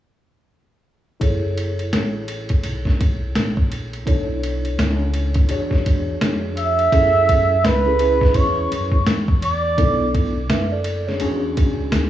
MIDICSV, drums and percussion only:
0, 0, Header, 1, 2, 480
1, 0, Start_track
1, 0, Key_signature, 3, "minor"
1, 0, Tempo, 714286
1, 812, Time_signature, 4, 2, 24, 8
1, 8129, End_track
2, 0, Start_track
2, 0, Title_t, "Drums"
2, 813, Note_on_c, 9, 36, 92
2, 814, Note_on_c, 9, 51, 62
2, 880, Note_off_c, 9, 36, 0
2, 881, Note_off_c, 9, 51, 0
2, 1058, Note_on_c, 9, 51, 52
2, 1125, Note_off_c, 9, 51, 0
2, 1204, Note_on_c, 9, 51, 37
2, 1271, Note_off_c, 9, 51, 0
2, 1296, Note_on_c, 9, 38, 88
2, 1296, Note_on_c, 9, 44, 43
2, 1296, Note_on_c, 9, 51, 62
2, 1363, Note_off_c, 9, 38, 0
2, 1364, Note_off_c, 9, 44, 0
2, 1364, Note_off_c, 9, 51, 0
2, 1532, Note_on_c, 9, 51, 57
2, 1599, Note_off_c, 9, 51, 0
2, 1673, Note_on_c, 9, 51, 39
2, 1680, Note_on_c, 9, 36, 79
2, 1740, Note_off_c, 9, 51, 0
2, 1747, Note_off_c, 9, 36, 0
2, 1770, Note_on_c, 9, 51, 64
2, 1837, Note_off_c, 9, 51, 0
2, 1917, Note_on_c, 9, 36, 67
2, 1929, Note_on_c, 9, 38, 29
2, 1984, Note_off_c, 9, 36, 0
2, 1996, Note_off_c, 9, 38, 0
2, 2019, Note_on_c, 9, 51, 52
2, 2020, Note_on_c, 9, 36, 88
2, 2086, Note_off_c, 9, 51, 0
2, 2088, Note_off_c, 9, 36, 0
2, 2254, Note_on_c, 9, 38, 94
2, 2256, Note_on_c, 9, 44, 43
2, 2256, Note_on_c, 9, 51, 65
2, 2321, Note_off_c, 9, 38, 0
2, 2323, Note_off_c, 9, 44, 0
2, 2323, Note_off_c, 9, 51, 0
2, 2399, Note_on_c, 9, 36, 86
2, 2467, Note_off_c, 9, 36, 0
2, 2496, Note_on_c, 9, 51, 52
2, 2563, Note_off_c, 9, 51, 0
2, 2643, Note_on_c, 9, 51, 34
2, 2710, Note_off_c, 9, 51, 0
2, 2734, Note_on_c, 9, 36, 93
2, 2736, Note_on_c, 9, 51, 59
2, 2801, Note_off_c, 9, 36, 0
2, 2803, Note_off_c, 9, 51, 0
2, 2980, Note_on_c, 9, 51, 54
2, 3047, Note_off_c, 9, 51, 0
2, 3124, Note_on_c, 9, 51, 37
2, 3191, Note_off_c, 9, 51, 0
2, 3218, Note_on_c, 9, 38, 85
2, 3219, Note_on_c, 9, 44, 45
2, 3219, Note_on_c, 9, 51, 65
2, 3286, Note_off_c, 9, 38, 0
2, 3287, Note_off_c, 9, 44, 0
2, 3287, Note_off_c, 9, 51, 0
2, 3452, Note_on_c, 9, 51, 54
2, 3519, Note_off_c, 9, 51, 0
2, 3592, Note_on_c, 9, 51, 42
2, 3599, Note_on_c, 9, 36, 89
2, 3659, Note_off_c, 9, 51, 0
2, 3666, Note_off_c, 9, 36, 0
2, 3688, Note_on_c, 9, 51, 59
2, 3755, Note_off_c, 9, 51, 0
2, 3836, Note_on_c, 9, 36, 68
2, 3849, Note_on_c, 9, 38, 30
2, 3904, Note_off_c, 9, 36, 0
2, 3916, Note_off_c, 9, 38, 0
2, 3938, Note_on_c, 9, 51, 55
2, 3940, Note_on_c, 9, 36, 81
2, 4005, Note_off_c, 9, 51, 0
2, 4007, Note_off_c, 9, 36, 0
2, 4175, Note_on_c, 9, 38, 97
2, 4177, Note_on_c, 9, 44, 45
2, 4177, Note_on_c, 9, 51, 63
2, 4242, Note_off_c, 9, 38, 0
2, 4245, Note_off_c, 9, 44, 0
2, 4245, Note_off_c, 9, 51, 0
2, 4415, Note_on_c, 9, 51, 53
2, 4483, Note_off_c, 9, 51, 0
2, 4562, Note_on_c, 9, 51, 33
2, 4629, Note_off_c, 9, 51, 0
2, 4653, Note_on_c, 9, 36, 109
2, 4654, Note_on_c, 9, 51, 67
2, 4720, Note_off_c, 9, 36, 0
2, 4721, Note_off_c, 9, 51, 0
2, 4898, Note_on_c, 9, 51, 58
2, 4899, Note_on_c, 9, 36, 85
2, 4965, Note_off_c, 9, 51, 0
2, 4966, Note_off_c, 9, 36, 0
2, 5137, Note_on_c, 9, 38, 94
2, 5138, Note_on_c, 9, 44, 47
2, 5138, Note_on_c, 9, 51, 64
2, 5204, Note_off_c, 9, 38, 0
2, 5205, Note_off_c, 9, 44, 0
2, 5205, Note_off_c, 9, 51, 0
2, 5371, Note_on_c, 9, 51, 56
2, 5438, Note_off_c, 9, 51, 0
2, 5519, Note_on_c, 9, 36, 80
2, 5532, Note_on_c, 9, 38, 36
2, 5586, Note_off_c, 9, 36, 0
2, 5599, Note_off_c, 9, 38, 0
2, 5606, Note_on_c, 9, 51, 64
2, 5608, Note_on_c, 9, 36, 82
2, 5674, Note_off_c, 9, 51, 0
2, 5676, Note_off_c, 9, 36, 0
2, 5858, Note_on_c, 9, 51, 59
2, 5925, Note_off_c, 9, 51, 0
2, 5991, Note_on_c, 9, 36, 75
2, 6059, Note_off_c, 9, 36, 0
2, 6092, Note_on_c, 9, 38, 97
2, 6094, Note_on_c, 9, 44, 49
2, 6094, Note_on_c, 9, 51, 66
2, 6159, Note_off_c, 9, 38, 0
2, 6161, Note_off_c, 9, 44, 0
2, 6161, Note_off_c, 9, 51, 0
2, 6238, Note_on_c, 9, 36, 92
2, 6305, Note_off_c, 9, 36, 0
2, 6333, Note_on_c, 9, 51, 59
2, 6400, Note_off_c, 9, 51, 0
2, 6572, Note_on_c, 9, 36, 103
2, 6572, Note_on_c, 9, 51, 61
2, 6639, Note_off_c, 9, 36, 0
2, 6640, Note_off_c, 9, 51, 0
2, 6818, Note_on_c, 9, 36, 86
2, 6818, Note_on_c, 9, 51, 59
2, 6885, Note_off_c, 9, 36, 0
2, 6885, Note_off_c, 9, 51, 0
2, 7054, Note_on_c, 9, 38, 99
2, 7055, Note_on_c, 9, 44, 47
2, 7055, Note_on_c, 9, 51, 69
2, 7121, Note_off_c, 9, 38, 0
2, 7122, Note_off_c, 9, 44, 0
2, 7122, Note_off_c, 9, 51, 0
2, 7287, Note_on_c, 9, 51, 60
2, 7354, Note_off_c, 9, 51, 0
2, 7450, Note_on_c, 9, 38, 37
2, 7517, Note_off_c, 9, 38, 0
2, 7524, Note_on_c, 9, 51, 65
2, 7591, Note_off_c, 9, 51, 0
2, 7775, Note_on_c, 9, 51, 60
2, 7778, Note_on_c, 9, 36, 93
2, 7842, Note_off_c, 9, 51, 0
2, 7845, Note_off_c, 9, 36, 0
2, 8010, Note_on_c, 9, 38, 92
2, 8013, Note_on_c, 9, 44, 47
2, 8013, Note_on_c, 9, 51, 71
2, 8078, Note_off_c, 9, 38, 0
2, 8080, Note_off_c, 9, 44, 0
2, 8080, Note_off_c, 9, 51, 0
2, 8129, End_track
0, 0, End_of_file